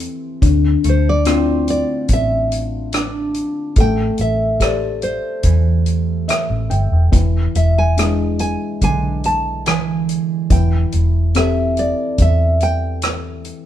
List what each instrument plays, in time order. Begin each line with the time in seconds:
Already playing: felt piano E3 C4 G4 A4, harp C4
0.00 closed hi-hat
0.42 fingered electric bass D2, felt piano D3, kick, closed hi-hat
0.84 fingered electric bass D2, harp A3, closed hi-hat
0.89 nylon-string guitar C5
1.09 nylon-string guitar D5
1.25 harp C4, felt piano C4 D4 E4 F4, cross-stick, closed hi-hat
1.68 nylon-string guitar D5, closed hi-hat
2.08 fingered electric bass A1, kick, closed hi-hat
2.13 nylon-string guitar E5
2.52 closed hi-hat
2.93 harp D4, cross-stick, closed hi-hat
3.34 closed hi-hat
3.76 fingered electric bass A1, felt piano A3, kick, closed hi-hat
3.80 nylon-string guitar G5
4.18 fingered electric bass A1, nylon-string guitar E5, closed hi-hat
4.60 felt piano G4 A4 C5, nylon-string guitar D5, kick, cross-stick, closed hi-hat
5.02 nylon-string guitar C5, closed hi-hat
5.43 fingered electric bass E2, harp E3, kick, closed hi-hat
5.86 closed hi-hat
6.28 felt piano E5, cross-stick, closed hi-hat
6.50 fingered electric bass A1
6.70 fingered electric bass G1, felt piano G5, closed hi-hat
6.92 fingered electric bass E1
7.12 fingered electric bass E1, felt piano E3, kick, closed hi-hat
7.55 fingered electric bass E1, nylon-string guitar E5, closed hi-hat
7.78 nylon-string guitar G#5
7.97 felt piano G#3 D4 E4, cross-stick, closed hi-hat
8.39 nylon-string guitar G#5, closed hi-hat
8.81 fingered electric bass B1, harp D3, nylon-string guitar G#5, kick, closed hi-hat
9.24 nylon-string guitar A5, closed hi-hat
9.66 harp E3, nylon-string guitar G#5, cross-stick, closed hi-hat
10.09 closed hi-hat
10.50 fingered electric bass E1, felt piano E3, nylon-string guitar G5, kick, closed hi-hat
10.92 fingered electric bass E1, closed hi-hat
11.35 felt piano C4 G4 A4, nylon-string guitar E5, cross-stick, closed hi-hat
11.77 nylon-string guitar D5, closed hi-hat
12.18 fingered electric bass E2, nylon-string guitar E5, kick, closed hi-hat
12.60 nylon-string guitar G5, closed hi-hat
13.02 cross-stick, closed hi-hat
13.45 closed hi-hat